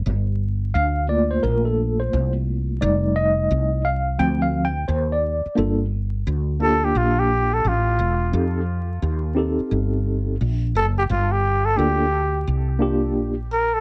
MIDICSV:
0, 0, Header, 1, 5, 480
1, 0, Start_track
1, 0, Key_signature, -2, "minor"
1, 0, Tempo, 689655
1, 38, Time_signature, 4, 2, 24, 8
1, 9608, End_track
2, 0, Start_track
2, 0, Title_t, "Muted trumpet"
2, 0, Program_c, 0, 59
2, 4612, Note_on_c, 0, 69, 105
2, 4763, Note_on_c, 0, 67, 90
2, 4773, Note_off_c, 0, 69, 0
2, 4852, Note_on_c, 0, 65, 89
2, 4863, Note_off_c, 0, 67, 0
2, 5006, Note_on_c, 0, 67, 88
2, 5016, Note_off_c, 0, 65, 0
2, 5245, Note_on_c, 0, 69, 84
2, 5256, Note_off_c, 0, 67, 0
2, 5345, Note_on_c, 0, 65, 83
2, 5356, Note_off_c, 0, 69, 0
2, 5811, Note_off_c, 0, 65, 0
2, 7492, Note_on_c, 0, 69, 104
2, 7558, Note_off_c, 0, 69, 0
2, 7644, Note_on_c, 0, 67, 102
2, 7680, Note_off_c, 0, 67, 0
2, 7732, Note_on_c, 0, 65, 87
2, 7876, Note_on_c, 0, 67, 89
2, 7887, Note_off_c, 0, 65, 0
2, 8109, Note_on_c, 0, 69, 94
2, 8120, Note_off_c, 0, 67, 0
2, 8191, Note_on_c, 0, 67, 87
2, 8201, Note_off_c, 0, 69, 0
2, 8674, Note_off_c, 0, 67, 0
2, 9411, Note_on_c, 0, 70, 86
2, 9561, Note_on_c, 0, 69, 88
2, 9571, Note_off_c, 0, 70, 0
2, 9608, Note_off_c, 0, 69, 0
2, 9608, End_track
3, 0, Start_track
3, 0, Title_t, "Tine electric piano"
3, 0, Program_c, 1, 4
3, 517, Note_on_c, 1, 77, 114
3, 740, Note_off_c, 1, 77, 0
3, 755, Note_on_c, 1, 57, 59
3, 759, Note_on_c, 1, 74, 91
3, 760, Note_on_c, 1, 58, 52
3, 763, Note_on_c, 1, 65, 55
3, 910, Note_on_c, 1, 72, 94
3, 917, Note_off_c, 1, 74, 0
3, 990, Note_off_c, 1, 72, 0
3, 995, Note_on_c, 1, 70, 91
3, 1150, Note_on_c, 1, 69, 77
3, 1155, Note_off_c, 1, 70, 0
3, 1391, Note_on_c, 1, 72, 82
3, 1398, Note_off_c, 1, 69, 0
3, 1614, Note_off_c, 1, 72, 0
3, 1928, Note_off_c, 1, 57, 0
3, 1931, Note_off_c, 1, 58, 0
3, 1933, Note_off_c, 1, 65, 0
3, 1955, Note_on_c, 1, 55, 50
3, 1956, Note_on_c, 1, 74, 81
3, 1959, Note_on_c, 1, 57, 54
3, 1961, Note_on_c, 1, 63, 60
3, 2199, Note_on_c, 1, 75, 98
3, 2204, Note_off_c, 1, 74, 0
3, 2648, Note_off_c, 1, 55, 0
3, 2650, Note_off_c, 1, 57, 0
3, 2651, Note_off_c, 1, 63, 0
3, 2678, Note_on_c, 1, 77, 96
3, 2692, Note_off_c, 1, 75, 0
3, 2913, Note_on_c, 1, 53, 57
3, 2918, Note_on_c, 1, 79, 117
3, 2920, Note_on_c, 1, 57, 49
3, 2920, Note_on_c, 1, 60, 60
3, 2925, Note_off_c, 1, 77, 0
3, 3066, Note_off_c, 1, 79, 0
3, 3077, Note_on_c, 1, 77, 90
3, 3235, Note_on_c, 1, 79, 103
3, 3242, Note_off_c, 1, 77, 0
3, 3260, Note_off_c, 1, 53, 0
3, 3264, Note_off_c, 1, 57, 0
3, 3264, Note_off_c, 1, 60, 0
3, 3396, Note_on_c, 1, 72, 83
3, 3401, Note_off_c, 1, 79, 0
3, 3561, Note_off_c, 1, 72, 0
3, 3566, Note_on_c, 1, 74, 79
3, 3859, Note_off_c, 1, 74, 0
3, 3866, Note_on_c, 1, 58, 66
3, 3873, Note_on_c, 1, 62, 64
3, 3880, Note_on_c, 1, 65, 63
3, 3888, Note_on_c, 1, 69, 78
3, 4060, Note_off_c, 1, 58, 0
3, 4064, Note_off_c, 1, 62, 0
3, 4067, Note_off_c, 1, 65, 0
3, 4071, Note_off_c, 1, 69, 0
3, 4593, Note_on_c, 1, 58, 76
3, 4598, Note_on_c, 1, 62, 69
3, 4603, Note_on_c, 1, 65, 62
3, 4612, Note_on_c, 1, 67, 76
3, 5281, Note_off_c, 1, 58, 0
3, 5284, Note_off_c, 1, 62, 0
3, 5286, Note_off_c, 1, 65, 0
3, 5290, Note_off_c, 1, 67, 0
3, 5790, Note_on_c, 1, 60, 61
3, 5797, Note_on_c, 1, 63, 49
3, 5803, Note_on_c, 1, 67, 53
3, 5813, Note_on_c, 1, 69, 57
3, 5982, Note_off_c, 1, 60, 0
3, 5986, Note_off_c, 1, 63, 0
3, 5989, Note_off_c, 1, 67, 0
3, 5994, Note_off_c, 1, 69, 0
3, 6506, Note_on_c, 1, 60, 81
3, 6514, Note_on_c, 1, 63, 66
3, 6520, Note_on_c, 1, 67, 73
3, 6529, Note_on_c, 1, 69, 81
3, 7198, Note_off_c, 1, 60, 0
3, 7202, Note_off_c, 1, 63, 0
3, 7204, Note_off_c, 1, 67, 0
3, 7209, Note_off_c, 1, 69, 0
3, 8185, Note_on_c, 1, 58, 67
3, 8192, Note_on_c, 1, 62, 70
3, 8200, Note_on_c, 1, 65, 63
3, 8206, Note_on_c, 1, 69, 75
3, 8380, Note_off_c, 1, 58, 0
3, 8383, Note_off_c, 1, 62, 0
3, 8387, Note_off_c, 1, 65, 0
3, 8390, Note_off_c, 1, 69, 0
3, 8902, Note_on_c, 1, 58, 80
3, 8909, Note_on_c, 1, 62, 77
3, 8917, Note_on_c, 1, 65, 79
3, 8923, Note_on_c, 1, 67, 99
3, 9273, Note_off_c, 1, 58, 0
3, 9277, Note_off_c, 1, 62, 0
3, 9280, Note_off_c, 1, 65, 0
3, 9283, Note_off_c, 1, 67, 0
3, 9608, End_track
4, 0, Start_track
4, 0, Title_t, "Fretless electric bass"
4, 0, Program_c, 2, 35
4, 41, Note_on_c, 2, 31, 105
4, 495, Note_off_c, 2, 31, 0
4, 521, Note_on_c, 2, 38, 97
4, 975, Note_off_c, 2, 38, 0
4, 998, Note_on_c, 2, 34, 88
4, 1454, Note_off_c, 2, 34, 0
4, 1484, Note_on_c, 2, 36, 93
4, 1937, Note_off_c, 2, 36, 0
4, 1962, Note_on_c, 2, 29, 125
4, 2416, Note_off_c, 2, 29, 0
4, 2440, Note_on_c, 2, 36, 98
4, 2895, Note_off_c, 2, 36, 0
4, 2919, Note_on_c, 2, 38, 104
4, 3374, Note_off_c, 2, 38, 0
4, 3399, Note_on_c, 2, 39, 92
4, 3773, Note_off_c, 2, 39, 0
4, 3880, Note_on_c, 2, 31, 100
4, 4335, Note_off_c, 2, 31, 0
4, 4362, Note_on_c, 2, 38, 95
4, 4816, Note_off_c, 2, 38, 0
4, 4838, Note_on_c, 2, 34, 86
4, 5294, Note_off_c, 2, 34, 0
4, 5321, Note_on_c, 2, 33, 82
4, 5547, Note_off_c, 2, 33, 0
4, 5559, Note_on_c, 2, 28, 94
4, 5786, Note_off_c, 2, 28, 0
4, 5799, Note_on_c, 2, 41, 99
4, 6254, Note_off_c, 2, 41, 0
4, 6280, Note_on_c, 2, 39, 94
4, 6653, Note_off_c, 2, 39, 0
4, 6759, Note_on_c, 2, 31, 85
4, 7214, Note_off_c, 2, 31, 0
4, 7244, Note_on_c, 2, 34, 81
4, 7469, Note_off_c, 2, 34, 0
4, 7483, Note_on_c, 2, 30, 95
4, 7708, Note_off_c, 2, 30, 0
4, 7722, Note_on_c, 2, 31, 101
4, 8176, Note_off_c, 2, 31, 0
4, 8202, Note_on_c, 2, 38, 81
4, 8656, Note_off_c, 2, 38, 0
4, 8682, Note_on_c, 2, 36, 91
4, 9160, Note_off_c, 2, 36, 0
4, 9160, Note_on_c, 2, 34, 84
4, 9608, Note_off_c, 2, 34, 0
4, 9608, End_track
5, 0, Start_track
5, 0, Title_t, "Muted fretless electric bass strokes"
5, 3797, Note_on_c, 9, 29, 48
5, 3867, Note_off_c, 9, 29, 0
5, 6675, Note_on_c, 9, 29, 45
5, 6744, Note_off_c, 9, 29, 0
5, 9608, End_track
0, 0, End_of_file